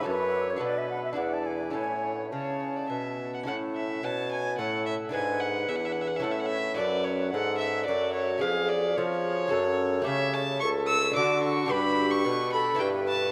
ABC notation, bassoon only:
X:1
M:3/4
L:1/8
Q:1/4=109
K:A
V:1 name="Bassoon" clef=bass
F,,2 B,,2 E,,2 | A,,2 C,2 B,,2 | A,,2 B,,2 A,,2 | G,,2 E,,2 A,,2 |
F,,2 G,,2 F,,2 | ^E,,2 ^E,2 F,,2 | [K:Amix] C,2 C,,2 D,2 | G,,2 B,,2 G,,2 |]